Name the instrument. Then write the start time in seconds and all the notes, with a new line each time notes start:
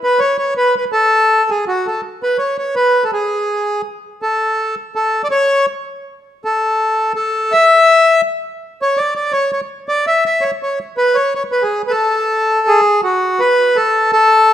accordion
0.04 B4
0.19 C#5
0.38 C#5
0.57 B4
0.78 B4
0.92 A4
1.50 G#4
1.68 F#4
1.87 A4
2.23 B4
2.38 C#5
2.58 C#5
2.76 B4
3.04 A4
3.13 G#4
4.22 A4
4.95 A4
5.24 D5
5.31 C#5
6.45 A4
7.15 A4
7.52 E5
8.82 C#5
8.97 D5
9.15 D5
9.32 C#5
9.52 C#5
9.89 D5
10.07 E5
10.26 E5
10.41 C#5
10.63 C#5
10.97 B4
11.15 C#5
11.35 C#5
11.52 B4
11.63 G#4
11.87 A4 B4
12.68 G#4
13.04 F#4
13.40 B4
13.76 A4
14.13 A4